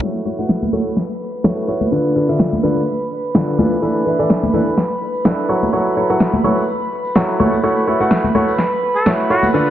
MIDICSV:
0, 0, Header, 1, 5, 480
1, 0, Start_track
1, 0, Key_signature, 3, "major"
1, 0, Tempo, 476190
1, 15, Time_signature, 4, 2, 24, 8
1, 9780, End_track
2, 0, Start_track
2, 0, Title_t, "Violin section"
2, 0, Program_c, 0, 48
2, 14, Note_on_c, 0, 71, 72
2, 15, Note_on_c, 0, 83, 75
2, 7682, Note_off_c, 0, 71, 0
2, 7682, Note_off_c, 0, 83, 0
2, 7694, Note_on_c, 0, 71, 76
2, 7694, Note_on_c, 0, 83, 77
2, 9780, Note_off_c, 0, 71, 0
2, 9780, Note_off_c, 0, 83, 0
2, 9780, End_track
3, 0, Start_track
3, 0, Title_t, "Muted trumpet"
3, 0, Program_c, 1, 59
3, 9027, Note_on_c, 1, 69, 83
3, 9183, Note_off_c, 1, 69, 0
3, 9375, Note_on_c, 1, 66, 88
3, 9547, Note_off_c, 1, 66, 0
3, 9780, End_track
4, 0, Start_track
4, 0, Title_t, "Grand piano"
4, 0, Program_c, 2, 0
4, 14, Note_on_c, 2, 57, 83
4, 14, Note_on_c, 2, 66, 73
4, 14, Note_on_c, 2, 73, 88
4, 15, Note_on_c, 2, 64, 74
4, 15, Note_on_c, 2, 69, 76
4, 223, Note_off_c, 2, 57, 0
4, 223, Note_off_c, 2, 64, 0
4, 223, Note_off_c, 2, 66, 0
4, 223, Note_off_c, 2, 69, 0
4, 223, Note_off_c, 2, 73, 0
4, 254, Note_on_c, 2, 57, 66
4, 254, Note_on_c, 2, 66, 62
4, 254, Note_on_c, 2, 69, 59
4, 254, Note_on_c, 2, 73, 73
4, 255, Note_on_c, 2, 64, 59
4, 355, Note_off_c, 2, 57, 0
4, 355, Note_off_c, 2, 66, 0
4, 356, Note_off_c, 2, 64, 0
4, 356, Note_off_c, 2, 69, 0
4, 356, Note_off_c, 2, 73, 0
4, 387, Note_on_c, 2, 57, 85
4, 387, Note_on_c, 2, 64, 79
4, 387, Note_on_c, 2, 66, 79
4, 387, Note_on_c, 2, 69, 78
4, 387, Note_on_c, 2, 78, 97
4, 630, Note_off_c, 2, 57, 0
4, 631, Note_off_c, 2, 64, 0
4, 631, Note_off_c, 2, 66, 0
4, 631, Note_off_c, 2, 69, 0
4, 631, Note_off_c, 2, 78, 0
4, 735, Note_on_c, 2, 57, 83
4, 735, Note_on_c, 2, 64, 74
4, 735, Note_on_c, 2, 66, 75
4, 735, Note_on_c, 2, 69, 76
4, 735, Note_on_c, 2, 73, 91
4, 896, Note_off_c, 2, 69, 0
4, 896, Note_off_c, 2, 73, 0
4, 897, Note_off_c, 2, 57, 0
4, 897, Note_off_c, 2, 64, 0
4, 897, Note_off_c, 2, 66, 0
4, 1453, Note_on_c, 2, 66, 73
4, 1453, Note_on_c, 2, 69, 71
4, 1454, Note_on_c, 2, 57, 78
4, 1454, Note_on_c, 2, 64, 72
4, 1454, Note_on_c, 2, 73, 88
4, 1669, Note_off_c, 2, 57, 0
4, 1669, Note_off_c, 2, 64, 0
4, 1669, Note_off_c, 2, 66, 0
4, 1669, Note_off_c, 2, 69, 0
4, 1669, Note_off_c, 2, 73, 0
4, 1694, Note_on_c, 2, 64, 82
4, 1695, Note_on_c, 2, 66, 76
4, 1695, Note_on_c, 2, 69, 75
4, 1695, Note_on_c, 2, 73, 91
4, 1856, Note_off_c, 2, 64, 0
4, 1856, Note_off_c, 2, 66, 0
4, 1857, Note_off_c, 2, 69, 0
4, 1857, Note_off_c, 2, 73, 0
4, 1934, Note_on_c, 2, 50, 82
4, 1934, Note_on_c, 2, 62, 76
4, 1934, Note_on_c, 2, 65, 75
4, 1934, Note_on_c, 2, 69, 76
4, 1934, Note_on_c, 2, 71, 90
4, 2142, Note_off_c, 2, 62, 0
4, 2142, Note_off_c, 2, 65, 0
4, 2142, Note_off_c, 2, 69, 0
4, 2143, Note_off_c, 2, 50, 0
4, 2143, Note_off_c, 2, 71, 0
4, 2174, Note_on_c, 2, 62, 62
4, 2174, Note_on_c, 2, 65, 61
4, 2174, Note_on_c, 2, 69, 61
4, 2174, Note_on_c, 2, 71, 71
4, 2175, Note_on_c, 2, 50, 66
4, 2275, Note_off_c, 2, 62, 0
4, 2276, Note_off_c, 2, 50, 0
4, 2276, Note_off_c, 2, 65, 0
4, 2276, Note_off_c, 2, 69, 0
4, 2276, Note_off_c, 2, 71, 0
4, 2307, Note_on_c, 2, 50, 86
4, 2307, Note_on_c, 2, 62, 80
4, 2307, Note_on_c, 2, 65, 79
4, 2307, Note_on_c, 2, 69, 78
4, 2307, Note_on_c, 2, 76, 96
4, 2550, Note_off_c, 2, 50, 0
4, 2550, Note_off_c, 2, 62, 0
4, 2550, Note_off_c, 2, 65, 0
4, 2550, Note_off_c, 2, 69, 0
4, 2550, Note_off_c, 2, 76, 0
4, 2654, Note_on_c, 2, 50, 83
4, 2654, Note_on_c, 2, 62, 79
4, 2654, Note_on_c, 2, 65, 77
4, 2654, Note_on_c, 2, 69, 78
4, 2654, Note_on_c, 2, 71, 93
4, 2816, Note_off_c, 2, 50, 0
4, 2816, Note_off_c, 2, 62, 0
4, 2816, Note_off_c, 2, 65, 0
4, 2816, Note_off_c, 2, 69, 0
4, 2816, Note_off_c, 2, 71, 0
4, 3375, Note_on_c, 2, 50, 82
4, 3375, Note_on_c, 2, 62, 72
4, 3375, Note_on_c, 2, 65, 73
4, 3375, Note_on_c, 2, 69, 73
4, 3375, Note_on_c, 2, 71, 90
4, 3589, Note_off_c, 2, 50, 0
4, 3589, Note_off_c, 2, 62, 0
4, 3589, Note_off_c, 2, 65, 0
4, 3589, Note_off_c, 2, 69, 0
4, 3589, Note_off_c, 2, 71, 0
4, 3614, Note_on_c, 2, 52, 85
4, 3614, Note_on_c, 2, 62, 77
4, 3614, Note_on_c, 2, 65, 76
4, 3614, Note_on_c, 2, 69, 80
4, 3614, Note_on_c, 2, 71, 95
4, 3776, Note_off_c, 2, 52, 0
4, 3776, Note_off_c, 2, 62, 0
4, 3776, Note_off_c, 2, 65, 0
4, 3776, Note_off_c, 2, 69, 0
4, 3776, Note_off_c, 2, 71, 0
4, 3854, Note_on_c, 2, 62, 75
4, 3854, Note_on_c, 2, 64, 74
4, 3854, Note_on_c, 2, 69, 76
4, 3854, Note_on_c, 2, 71, 91
4, 3855, Note_on_c, 2, 52, 83
4, 4063, Note_off_c, 2, 52, 0
4, 4063, Note_off_c, 2, 62, 0
4, 4063, Note_off_c, 2, 64, 0
4, 4063, Note_off_c, 2, 69, 0
4, 4063, Note_off_c, 2, 71, 0
4, 4094, Note_on_c, 2, 52, 67
4, 4094, Note_on_c, 2, 62, 61
4, 4094, Note_on_c, 2, 64, 62
4, 4094, Note_on_c, 2, 69, 62
4, 4094, Note_on_c, 2, 71, 75
4, 4195, Note_off_c, 2, 52, 0
4, 4195, Note_off_c, 2, 69, 0
4, 4195, Note_off_c, 2, 71, 0
4, 4196, Note_off_c, 2, 62, 0
4, 4196, Note_off_c, 2, 64, 0
4, 4227, Note_on_c, 2, 52, 90
4, 4227, Note_on_c, 2, 62, 80
4, 4227, Note_on_c, 2, 64, 80
4, 4227, Note_on_c, 2, 69, 80
4, 4227, Note_on_c, 2, 74, 98
4, 4470, Note_off_c, 2, 52, 0
4, 4470, Note_off_c, 2, 64, 0
4, 4470, Note_off_c, 2, 69, 0
4, 4470, Note_off_c, 2, 74, 0
4, 4471, Note_off_c, 2, 62, 0
4, 4574, Note_on_c, 2, 52, 84
4, 4574, Note_on_c, 2, 62, 76
4, 4574, Note_on_c, 2, 64, 80
4, 4574, Note_on_c, 2, 69, 78
4, 4574, Note_on_c, 2, 71, 92
4, 4736, Note_off_c, 2, 52, 0
4, 4736, Note_off_c, 2, 62, 0
4, 4736, Note_off_c, 2, 64, 0
4, 4736, Note_off_c, 2, 69, 0
4, 4736, Note_off_c, 2, 71, 0
4, 5295, Note_on_c, 2, 62, 79
4, 5295, Note_on_c, 2, 64, 74
4, 5295, Note_on_c, 2, 69, 74
4, 5295, Note_on_c, 2, 71, 90
4, 5509, Note_off_c, 2, 62, 0
4, 5509, Note_off_c, 2, 69, 0
4, 5510, Note_off_c, 2, 64, 0
4, 5510, Note_off_c, 2, 71, 0
4, 5534, Note_on_c, 2, 64, 77
4, 5535, Note_on_c, 2, 54, 86
4, 5535, Note_on_c, 2, 66, 77
4, 5535, Note_on_c, 2, 69, 79
4, 5535, Note_on_c, 2, 73, 94
4, 5696, Note_off_c, 2, 54, 0
4, 5696, Note_off_c, 2, 64, 0
4, 5696, Note_off_c, 2, 66, 0
4, 5696, Note_off_c, 2, 69, 0
4, 5696, Note_off_c, 2, 73, 0
4, 5774, Note_on_c, 2, 54, 81
4, 5774, Note_on_c, 2, 64, 75
4, 5774, Note_on_c, 2, 66, 75
4, 5774, Note_on_c, 2, 69, 75
4, 5774, Note_on_c, 2, 73, 90
4, 5982, Note_off_c, 2, 54, 0
4, 5982, Note_off_c, 2, 64, 0
4, 5982, Note_off_c, 2, 66, 0
4, 5982, Note_off_c, 2, 69, 0
4, 5982, Note_off_c, 2, 73, 0
4, 6014, Note_on_c, 2, 54, 67
4, 6014, Note_on_c, 2, 64, 62
4, 6014, Note_on_c, 2, 66, 60
4, 6014, Note_on_c, 2, 69, 63
4, 6014, Note_on_c, 2, 73, 74
4, 6115, Note_off_c, 2, 54, 0
4, 6115, Note_off_c, 2, 69, 0
4, 6116, Note_off_c, 2, 64, 0
4, 6116, Note_off_c, 2, 66, 0
4, 6116, Note_off_c, 2, 73, 0
4, 6146, Note_on_c, 2, 54, 88
4, 6146, Note_on_c, 2, 64, 81
4, 6146, Note_on_c, 2, 66, 79
4, 6146, Note_on_c, 2, 69, 80
4, 6146, Note_on_c, 2, 78, 99
4, 6390, Note_off_c, 2, 54, 0
4, 6390, Note_off_c, 2, 64, 0
4, 6390, Note_off_c, 2, 66, 0
4, 6390, Note_off_c, 2, 69, 0
4, 6390, Note_off_c, 2, 78, 0
4, 6494, Note_on_c, 2, 54, 85
4, 6494, Note_on_c, 2, 64, 76
4, 6494, Note_on_c, 2, 66, 76
4, 6494, Note_on_c, 2, 69, 76
4, 6494, Note_on_c, 2, 73, 91
4, 6656, Note_off_c, 2, 54, 0
4, 6656, Note_off_c, 2, 64, 0
4, 6656, Note_off_c, 2, 66, 0
4, 6656, Note_off_c, 2, 69, 0
4, 6656, Note_off_c, 2, 73, 0
4, 7215, Note_on_c, 2, 54, 81
4, 7215, Note_on_c, 2, 64, 74
4, 7215, Note_on_c, 2, 66, 74
4, 7215, Note_on_c, 2, 69, 73
4, 7215, Note_on_c, 2, 73, 87
4, 7429, Note_off_c, 2, 54, 0
4, 7429, Note_off_c, 2, 64, 0
4, 7429, Note_off_c, 2, 66, 0
4, 7429, Note_off_c, 2, 69, 0
4, 7429, Note_off_c, 2, 73, 0
4, 7455, Note_on_c, 2, 57, 82
4, 7455, Note_on_c, 2, 64, 77
4, 7455, Note_on_c, 2, 66, 76
4, 7455, Note_on_c, 2, 69, 78
4, 7455, Note_on_c, 2, 73, 93
4, 7616, Note_off_c, 2, 64, 0
4, 7616, Note_off_c, 2, 66, 0
4, 7616, Note_off_c, 2, 69, 0
4, 7616, Note_off_c, 2, 73, 0
4, 7617, Note_off_c, 2, 57, 0
4, 7695, Note_on_c, 2, 57, 82
4, 7695, Note_on_c, 2, 64, 73
4, 7695, Note_on_c, 2, 66, 74
4, 7695, Note_on_c, 2, 69, 74
4, 7695, Note_on_c, 2, 73, 90
4, 7903, Note_off_c, 2, 57, 0
4, 7903, Note_off_c, 2, 64, 0
4, 7903, Note_off_c, 2, 66, 0
4, 7903, Note_off_c, 2, 69, 0
4, 7903, Note_off_c, 2, 73, 0
4, 7935, Note_on_c, 2, 57, 68
4, 7935, Note_on_c, 2, 64, 61
4, 7935, Note_on_c, 2, 66, 61
4, 7935, Note_on_c, 2, 69, 62
4, 7935, Note_on_c, 2, 73, 74
4, 8036, Note_off_c, 2, 57, 0
4, 8036, Note_off_c, 2, 64, 0
4, 8036, Note_off_c, 2, 66, 0
4, 8036, Note_off_c, 2, 69, 0
4, 8036, Note_off_c, 2, 73, 0
4, 8067, Note_on_c, 2, 57, 88
4, 8067, Note_on_c, 2, 64, 81
4, 8067, Note_on_c, 2, 66, 82
4, 8067, Note_on_c, 2, 69, 80
4, 8067, Note_on_c, 2, 78, 95
4, 8310, Note_off_c, 2, 57, 0
4, 8310, Note_off_c, 2, 66, 0
4, 8310, Note_off_c, 2, 69, 0
4, 8310, Note_off_c, 2, 78, 0
4, 8311, Note_off_c, 2, 64, 0
4, 8415, Note_on_c, 2, 57, 84
4, 8415, Note_on_c, 2, 64, 77
4, 8415, Note_on_c, 2, 66, 78
4, 8415, Note_on_c, 2, 69, 77
4, 8415, Note_on_c, 2, 73, 92
4, 8576, Note_off_c, 2, 57, 0
4, 8576, Note_off_c, 2, 64, 0
4, 8576, Note_off_c, 2, 66, 0
4, 8576, Note_off_c, 2, 69, 0
4, 8576, Note_off_c, 2, 73, 0
4, 9135, Note_on_c, 2, 57, 79
4, 9135, Note_on_c, 2, 66, 72
4, 9135, Note_on_c, 2, 73, 86
4, 9136, Note_on_c, 2, 64, 74
4, 9136, Note_on_c, 2, 69, 73
4, 9349, Note_off_c, 2, 57, 0
4, 9350, Note_off_c, 2, 64, 0
4, 9350, Note_off_c, 2, 66, 0
4, 9350, Note_off_c, 2, 69, 0
4, 9350, Note_off_c, 2, 73, 0
4, 9375, Note_on_c, 2, 64, 86
4, 9375, Note_on_c, 2, 66, 78
4, 9375, Note_on_c, 2, 69, 79
4, 9375, Note_on_c, 2, 73, 92
4, 9536, Note_off_c, 2, 66, 0
4, 9536, Note_off_c, 2, 69, 0
4, 9536, Note_off_c, 2, 73, 0
4, 9537, Note_off_c, 2, 64, 0
4, 9615, Note_on_c, 2, 62, 74
4, 9615, Note_on_c, 2, 65, 76
4, 9615, Note_on_c, 2, 69, 77
4, 9615, Note_on_c, 2, 71, 92
4, 9616, Note_on_c, 2, 50, 83
4, 9780, Note_off_c, 2, 50, 0
4, 9780, Note_off_c, 2, 62, 0
4, 9780, Note_off_c, 2, 65, 0
4, 9780, Note_off_c, 2, 69, 0
4, 9780, Note_off_c, 2, 71, 0
4, 9780, End_track
5, 0, Start_track
5, 0, Title_t, "Drums"
5, 20, Note_on_c, 9, 54, 57
5, 121, Note_off_c, 9, 54, 0
5, 142, Note_on_c, 9, 54, 36
5, 243, Note_off_c, 9, 54, 0
5, 395, Note_on_c, 9, 54, 74
5, 494, Note_on_c, 9, 38, 112
5, 495, Note_off_c, 9, 54, 0
5, 497, Note_on_c, 9, 54, 61
5, 595, Note_off_c, 9, 38, 0
5, 598, Note_off_c, 9, 54, 0
5, 628, Note_on_c, 9, 63, 78
5, 630, Note_on_c, 9, 54, 35
5, 729, Note_off_c, 9, 63, 0
5, 730, Note_on_c, 9, 63, 59
5, 731, Note_off_c, 9, 54, 0
5, 831, Note_off_c, 9, 63, 0
5, 865, Note_on_c, 9, 54, 65
5, 966, Note_off_c, 9, 54, 0
5, 974, Note_on_c, 9, 38, 58
5, 975, Note_on_c, 9, 54, 57
5, 1075, Note_off_c, 9, 38, 0
5, 1076, Note_off_c, 9, 54, 0
5, 1108, Note_on_c, 9, 54, 38
5, 1209, Note_off_c, 9, 54, 0
5, 1346, Note_on_c, 9, 54, 71
5, 1447, Note_off_c, 9, 54, 0
5, 1453, Note_on_c, 9, 38, 114
5, 1456, Note_on_c, 9, 54, 58
5, 1554, Note_off_c, 9, 38, 0
5, 1557, Note_off_c, 9, 54, 0
5, 1588, Note_on_c, 9, 54, 36
5, 1689, Note_off_c, 9, 54, 0
5, 1822, Note_on_c, 9, 63, 68
5, 1831, Note_on_c, 9, 54, 67
5, 1923, Note_off_c, 9, 63, 0
5, 1931, Note_off_c, 9, 54, 0
5, 1938, Note_on_c, 9, 54, 64
5, 2039, Note_off_c, 9, 54, 0
5, 2070, Note_on_c, 9, 54, 34
5, 2171, Note_off_c, 9, 54, 0
5, 2308, Note_on_c, 9, 54, 70
5, 2409, Note_off_c, 9, 54, 0
5, 2412, Note_on_c, 9, 54, 65
5, 2413, Note_on_c, 9, 38, 115
5, 2513, Note_off_c, 9, 54, 0
5, 2514, Note_off_c, 9, 38, 0
5, 2548, Note_on_c, 9, 63, 81
5, 2549, Note_on_c, 9, 54, 40
5, 2649, Note_off_c, 9, 63, 0
5, 2650, Note_off_c, 9, 54, 0
5, 2657, Note_on_c, 9, 63, 58
5, 2758, Note_off_c, 9, 63, 0
5, 2790, Note_on_c, 9, 54, 78
5, 2890, Note_off_c, 9, 54, 0
5, 2890, Note_on_c, 9, 54, 65
5, 2991, Note_off_c, 9, 54, 0
5, 3026, Note_on_c, 9, 54, 38
5, 3127, Note_off_c, 9, 54, 0
5, 3273, Note_on_c, 9, 54, 76
5, 3373, Note_off_c, 9, 54, 0
5, 3373, Note_on_c, 9, 54, 63
5, 3374, Note_on_c, 9, 38, 120
5, 3474, Note_off_c, 9, 54, 0
5, 3475, Note_off_c, 9, 38, 0
5, 3505, Note_on_c, 9, 54, 36
5, 3606, Note_off_c, 9, 54, 0
5, 3614, Note_on_c, 9, 63, 93
5, 3715, Note_off_c, 9, 63, 0
5, 3748, Note_on_c, 9, 54, 77
5, 3849, Note_off_c, 9, 54, 0
5, 3852, Note_on_c, 9, 54, 57
5, 3953, Note_off_c, 9, 54, 0
5, 3994, Note_on_c, 9, 54, 35
5, 4095, Note_off_c, 9, 54, 0
5, 4228, Note_on_c, 9, 54, 80
5, 4329, Note_off_c, 9, 54, 0
5, 4333, Note_on_c, 9, 38, 112
5, 4334, Note_on_c, 9, 54, 69
5, 4434, Note_off_c, 9, 38, 0
5, 4435, Note_off_c, 9, 54, 0
5, 4467, Note_on_c, 9, 63, 88
5, 4468, Note_on_c, 9, 54, 42
5, 4568, Note_off_c, 9, 54, 0
5, 4568, Note_off_c, 9, 63, 0
5, 4569, Note_on_c, 9, 63, 64
5, 4669, Note_off_c, 9, 63, 0
5, 4712, Note_on_c, 9, 54, 74
5, 4813, Note_off_c, 9, 54, 0
5, 4813, Note_on_c, 9, 38, 56
5, 4820, Note_on_c, 9, 54, 68
5, 4914, Note_off_c, 9, 38, 0
5, 4921, Note_off_c, 9, 54, 0
5, 4945, Note_on_c, 9, 54, 35
5, 5046, Note_off_c, 9, 54, 0
5, 5182, Note_on_c, 9, 54, 81
5, 5283, Note_off_c, 9, 54, 0
5, 5289, Note_on_c, 9, 54, 62
5, 5292, Note_on_c, 9, 38, 113
5, 5390, Note_off_c, 9, 54, 0
5, 5393, Note_off_c, 9, 38, 0
5, 5424, Note_on_c, 9, 54, 39
5, 5525, Note_off_c, 9, 54, 0
5, 5668, Note_on_c, 9, 54, 69
5, 5672, Note_on_c, 9, 63, 60
5, 5769, Note_off_c, 9, 54, 0
5, 5772, Note_off_c, 9, 63, 0
5, 5774, Note_on_c, 9, 54, 62
5, 5875, Note_off_c, 9, 54, 0
5, 5908, Note_on_c, 9, 54, 39
5, 6009, Note_off_c, 9, 54, 0
5, 6149, Note_on_c, 9, 54, 77
5, 6250, Note_off_c, 9, 54, 0
5, 6252, Note_on_c, 9, 38, 106
5, 6256, Note_on_c, 9, 54, 61
5, 6353, Note_off_c, 9, 38, 0
5, 6357, Note_off_c, 9, 54, 0
5, 6380, Note_on_c, 9, 54, 37
5, 6383, Note_on_c, 9, 63, 81
5, 6480, Note_off_c, 9, 54, 0
5, 6484, Note_off_c, 9, 63, 0
5, 6493, Note_on_c, 9, 63, 60
5, 6594, Note_off_c, 9, 63, 0
5, 6627, Note_on_c, 9, 54, 80
5, 6728, Note_off_c, 9, 54, 0
5, 6739, Note_on_c, 9, 54, 65
5, 6840, Note_off_c, 9, 54, 0
5, 6868, Note_on_c, 9, 54, 37
5, 6969, Note_off_c, 9, 54, 0
5, 7104, Note_on_c, 9, 54, 69
5, 7205, Note_off_c, 9, 54, 0
5, 7213, Note_on_c, 9, 38, 110
5, 7216, Note_on_c, 9, 54, 68
5, 7313, Note_off_c, 9, 38, 0
5, 7317, Note_off_c, 9, 54, 0
5, 7342, Note_on_c, 9, 54, 38
5, 7443, Note_off_c, 9, 54, 0
5, 7459, Note_on_c, 9, 63, 85
5, 7560, Note_off_c, 9, 63, 0
5, 7591, Note_on_c, 9, 54, 74
5, 7692, Note_off_c, 9, 54, 0
5, 7698, Note_on_c, 9, 54, 64
5, 7799, Note_off_c, 9, 54, 0
5, 7826, Note_on_c, 9, 54, 39
5, 7927, Note_off_c, 9, 54, 0
5, 8071, Note_on_c, 9, 54, 71
5, 8171, Note_off_c, 9, 54, 0
5, 8171, Note_on_c, 9, 54, 67
5, 8173, Note_on_c, 9, 38, 105
5, 8271, Note_off_c, 9, 54, 0
5, 8274, Note_off_c, 9, 38, 0
5, 8307, Note_on_c, 9, 63, 73
5, 8309, Note_on_c, 9, 54, 36
5, 8407, Note_off_c, 9, 63, 0
5, 8410, Note_off_c, 9, 54, 0
5, 8414, Note_on_c, 9, 63, 56
5, 8515, Note_off_c, 9, 63, 0
5, 8553, Note_on_c, 9, 54, 71
5, 8651, Note_off_c, 9, 54, 0
5, 8651, Note_on_c, 9, 54, 57
5, 8653, Note_on_c, 9, 38, 55
5, 8751, Note_off_c, 9, 54, 0
5, 8754, Note_off_c, 9, 38, 0
5, 8792, Note_on_c, 9, 54, 37
5, 8893, Note_off_c, 9, 54, 0
5, 9027, Note_on_c, 9, 54, 73
5, 9128, Note_off_c, 9, 54, 0
5, 9133, Note_on_c, 9, 54, 64
5, 9134, Note_on_c, 9, 38, 109
5, 9233, Note_off_c, 9, 54, 0
5, 9235, Note_off_c, 9, 38, 0
5, 9271, Note_on_c, 9, 54, 37
5, 9372, Note_off_c, 9, 54, 0
5, 9502, Note_on_c, 9, 63, 64
5, 9510, Note_on_c, 9, 54, 73
5, 9603, Note_off_c, 9, 63, 0
5, 9611, Note_off_c, 9, 54, 0
5, 9619, Note_on_c, 9, 54, 54
5, 9720, Note_off_c, 9, 54, 0
5, 9740, Note_on_c, 9, 54, 36
5, 9780, Note_off_c, 9, 54, 0
5, 9780, End_track
0, 0, End_of_file